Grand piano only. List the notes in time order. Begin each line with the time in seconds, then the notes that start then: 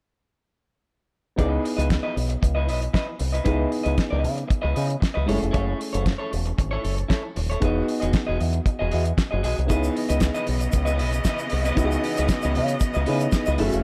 1.36 B3 D#4 E4 G#4
3.45 B3 D#4 E4 G#4
5.26 G#3 C#4 E4 G#4
5.32 A3
7.60 B3 D#4 F#4 G#4
9.66 B3 D#4 E4 G#4
11.75 B3 D#4 E4 F#4
11.84 G#4
13.06 B3 D#4 E4 G#4
13.58 A3 C#4 E4 G#4